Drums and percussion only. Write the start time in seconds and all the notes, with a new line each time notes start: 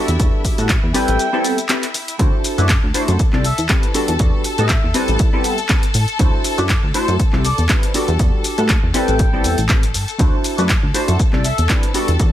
0.08 closed hi-hat, shaker
0.20 kick, closed hi-hat, shaker
0.45 kick, open hi-hat, shaker
0.58 closed hi-hat, shaker
0.69 kick, clap, closed hi-hat, shaker
0.94 open hi-hat, shaker
1.08 closed hi-hat, shaker
1.19 closed hi-hat, shaker
1.44 open hi-hat, shaker
1.58 closed hi-hat, shaker
1.69 clap, closed hi-hat, shaker
1.83 clap, closed hi-hat, shaker
1.94 open hi-hat, shaker
2.08 closed hi-hat, shaker
2.19 kick, closed hi-hat, shaker
2.44 open hi-hat, shaker
2.58 closed hi-hat, shaker
2.69 kick, clap, closed hi-hat, shaker
2.94 open hi-hat, shaker
3.08 closed hi-hat, shaker
3.19 kick, closed hi-hat, shaker
3.33 clap
3.44 open hi-hat, shaker
3.58 closed hi-hat, shaker
3.69 kick, clap, closed hi-hat, shaker
3.83 closed hi-hat, shaker
3.94 open hi-hat, shaker
4.08 closed hi-hat, shaker
4.19 kick, closed hi-hat, shaker
4.44 open hi-hat, shaker
4.58 closed hi-hat, shaker
4.69 kick, clap, closed hi-hat, shaker
4.94 open hi-hat, shaker
5.08 closed hi-hat, shaker
5.19 kick, closed hi-hat, shaker
5.44 open hi-hat, shaker
5.58 closed hi-hat, shaker
5.69 kick, clap, closed hi-hat, shaker
5.83 closed hi-hat, shaker
5.94 open hi-hat, shaker
6.08 closed hi-hat, shaker
6.19 kick, closed hi-hat, shaker
6.44 open hi-hat, shaker
6.58 closed hi-hat, shaker
6.69 kick, clap, closed hi-hat, shaker
6.94 open hi-hat, shaker
7.08 closed hi-hat, shaker
7.20 kick, closed hi-hat, shaker
7.33 clap
7.45 open hi-hat, shaker
7.58 closed hi-hat, shaker
7.69 kick, clap, closed hi-hat, shaker
7.83 closed hi-hat, shaker
7.94 open hi-hat, shaker
8.08 closed hi-hat, shaker
8.19 kick, closed hi-hat, shaker
8.44 open hi-hat, shaker
8.58 closed hi-hat, shaker
8.69 kick, clap, closed hi-hat, shaker
8.94 open hi-hat, shaker
9.08 closed hi-hat, shaker
9.19 kick, closed hi-hat, shaker
9.44 open hi-hat, shaker
9.58 closed hi-hat, shaker
9.69 kick, clap, closed hi-hat, shaker
9.83 closed hi-hat, shaker
9.94 open hi-hat, shaker
10.08 closed hi-hat, shaker
10.19 kick, closed hi-hat, shaker
10.44 open hi-hat, shaker
10.58 closed hi-hat, shaker
10.69 kick, clap, closed hi-hat, shaker
10.94 open hi-hat, shaker
11.08 closed hi-hat, shaker
11.19 kick, closed hi-hat, shaker
11.33 clap
11.44 open hi-hat, shaker
11.58 closed hi-hat, shaker
11.69 kick, clap, closed hi-hat, shaker
11.83 closed hi-hat, shaker
11.94 open hi-hat, shaker
12.08 closed hi-hat, shaker
12.20 kick, closed hi-hat, shaker